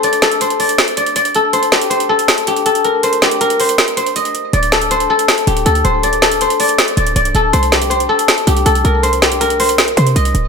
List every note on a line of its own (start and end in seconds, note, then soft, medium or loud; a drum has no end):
0.00 0.97 C4 medium
0.00 1.72 G4 medium
0.00 0.22 A4 medium
0.00 0.41 C5 medium
0.00 0.59 D5 loud
0.00 closed hi-hat medium
0.13 closed hi-hat medium
0.22 1.35 A4 medium
0.22 snare loud
0.22 closed hi-hat medium
0.32 closed hi-hat medium
0.41 1.53 C5 medium
0.41 closed hi-hat medium
0.50 closed hi-hat medium
0.60 0.97 D5 medium
0.60 open hi-hat medium
0.69 closed hi-hat medium
0.78 snare loud
0.78 closed hi-hat medium
0.88 closed hi-hat soft
0.97 1.16 D5 medium
0.97 closed hi-hat medium
1.06 closed hi-hat medium
1.16 3.01 D5 medium
1.16 closed hi-hat medium
1.25 closed hi-hat medium
1.35 2.09 A4 medium
1.35 closed hi-hat medium
1.53 1.90 C5 medium
1.53 closed hi-hat medium
1.63 closed hi-hat medium
1.72 2.47 G4 medium
1.72 snare loud
1.72 closed hi-hat medium
1.82 closed hi-hat medium
1.90 3.03 C5 medium
1.90 closed hi-hat medium
2.00 closed hi-hat medium
2.09 2.65 A4 medium
2.19 closed hi-hat medium
2.28 snare loud
2.28 closed hi-hat medium
2.38 closed hi-hat soft
2.47 3.22 G4 medium
2.47 closed hi-hat medium
2.56 closed hi-hat medium
2.66 2.91 A4 medium
2.66 closed hi-hat medium
2.75 closed hi-hat medium
2.85 3.40 A#4 medium
2.85 closed hi-hat medium
3.03 3.60 C5 medium
3.03 closed hi-hat medium
3.13 closed hi-hat medium
3.22 5.47 G4 medium
3.22 snare loud
3.22 closed hi-hat medium
3.31 closed hi-hat medium
3.41 4.79 A#4 medium
3.41 closed hi-hat medium
3.50 closed hi-hat medium
3.60 3.97 C5 medium
3.60 open hi-hat medium
3.69 closed hi-hat medium
3.78 snare loud
3.78 closed hi-hat medium
3.88 closed hi-hat soft
3.97 4.91 C5 medium
3.97 closed hi-hat medium
4.06 closed hi-hat medium
4.16 4.59 D#5 medium
4.16 closed hi-hat medium
4.25 closed hi-hat medium
4.35 closed hi-hat medium
4.53 5.07 D1 loud
4.53 6.03 D5 medium
4.53 closed hi-hat medium
4.63 closed hi-hat medium
4.72 5.09 A4 medium
4.72 snare loud
4.72 closed hi-hat medium
4.82 closed hi-hat medium
4.91 5.84 C5 medium
4.91 closed hi-hat medium
5.00 closed hi-hat medium
5.10 5.65 A4 medium
5.19 closed hi-hat medium
5.28 snare loud
5.28 closed hi-hat medium
5.38 closed hi-hat soft
5.47 5.65 D1 loud
5.47 7.72 G4 medium
5.47 closed hi-hat medium
5.57 closed hi-hat medium
5.66 5.84 D2 loud
5.66 6.22 A4 medium
5.66 closed hi-hat medium
5.75 closed hi-hat medium
5.84 6.48 D1 loud
5.84 6.41 C5 medium
5.84 closed hi-hat medium
6.03 6.60 D5 loud
6.03 closed hi-hat medium
6.13 closed hi-hat medium
6.22 7.35 A4 medium
6.22 snare loud
6.22 closed hi-hat medium
6.32 closed hi-hat medium
6.41 7.53 C5 medium
6.41 closed hi-hat medium
6.50 closed hi-hat medium
6.60 6.97 D5 medium
6.60 open hi-hat medium
6.69 closed hi-hat medium
6.78 snare loud
6.78 closed hi-hat medium
6.88 closed hi-hat soft
6.97 7.15 D1 loud
6.97 7.15 D5 medium
6.97 closed hi-hat medium
7.07 closed hi-hat medium
7.16 7.34 C1 loud
7.16 9.01 D5 medium
7.16 closed hi-hat medium
7.25 closed hi-hat medium
7.35 7.53 D1 loud
7.35 8.09 A4 medium
7.35 closed hi-hat medium
7.53 8.07 C2 loud
7.53 7.90 C5 medium
7.53 closed hi-hat medium
7.63 closed hi-hat medium
7.72 8.47 G4 medium
7.72 snare loud
7.72 closed hi-hat medium
7.82 closed hi-hat medium
7.90 9.03 C5 medium
7.90 closed hi-hat medium
8.00 closed hi-hat medium
8.09 8.65 A4 medium
8.19 closed hi-hat medium
8.28 snare loud
8.28 closed hi-hat medium
8.38 closed hi-hat soft
8.47 8.65 C2 loud
8.47 9.22 G4 medium
8.47 closed hi-hat medium
8.57 closed hi-hat medium
8.66 8.84 C2 loud
8.66 8.91 A4 medium
8.66 closed hi-hat medium
8.75 closed hi-hat medium
8.85 9.93 C2 loud
8.85 9.40 A#4 medium
8.85 closed hi-hat medium
9.03 9.59 C5 medium
9.03 closed hi-hat medium
9.13 closed hi-hat medium
9.22 10.48 G4 medium
9.22 snare loud
9.22 closed hi-hat medium
9.32 closed hi-hat medium
9.41 10.48 A#4 medium
9.41 closed hi-hat medium
9.50 closed hi-hat medium
9.60 9.96 C5 medium
9.60 open hi-hat medium
9.69 closed hi-hat medium
9.78 snare loud
9.78 closed hi-hat medium
9.88 closed hi-hat soft
9.97 10.15 C3 loud
9.97 10.48 C5 medium
9.97 closed hi-hat medium
10.07 closed hi-hat medium
10.16 10.34 C2 loud
10.16 10.48 D#5 medium
10.16 closed hi-hat medium
10.25 closed hi-hat medium
10.35 10.48 D1 loud
10.35 closed hi-hat medium